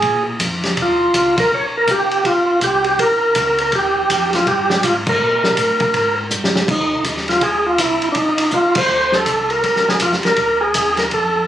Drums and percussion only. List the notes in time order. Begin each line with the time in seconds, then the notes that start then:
0.02 kick, ride
0.40 kick, hi-hat pedal, ride
0.63 snare, ride
0.77 kick, ride
1.14 kick, hi-hat pedal, ride
1.38 kick, ride
1.51 kick
1.87 kick, hi-hat pedal, ride
2.11 ride
2.25 kick, ride
2.61 kick, hi-hat pedal, ride
2.84 ride
2.99 kick, ride
3.35 kick, hi-hat pedal, ride
3.58 ride
3.72 kick, ride
4.10 kick, hi-hat pedal, ride
4.33 snare, ride
4.47 kick, ride
4.70 snare
4.83 kick, hi-hat pedal, ride
5.07 kick, crash
5.44 snare
5.57 kick, hi-hat pedal, ride
5.80 kick, ride
5.94 kick, ride
6.30 hi-hat pedal
6.44 snare
6.56 snare
6.68 kick, crash
7.04 kick, hi-hat pedal, ride
7.17 snare
7.28 snare, ride
7.41 kick, ride
7.78 kick, hi-hat pedal, ride
8.02 ride
8.15 kick, ride
8.38 ride
8.51 kick, hi-hat pedal
8.75 kick, crash
9.12 snare
9.26 kick, hi-hat pedal, ride
9.50 ride
9.64 kick, ride
9.76 snare
9.88 snare
10.00 kick, hi-hat pedal, ride
10.12 snare
10.23 snare, ride
10.36 kick, ride
10.74 kick, hi-hat pedal, ride
10.97 snare, ride
11.11 kick, ride